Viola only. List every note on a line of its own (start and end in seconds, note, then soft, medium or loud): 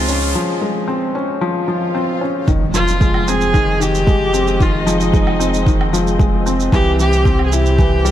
0.00 0.35 F4 loud
2.75 3.30 F4 loud
3.28 3.83 G#4 loud
3.82 4.64 G4 loud
4.62 4.90 F4 loud
4.89 5.94 D#4 medium
6.73 6.98 G4 loud
7.00 7.42 G4 loud
7.46 7.55 G#4 medium
7.54 8.11 G4 loud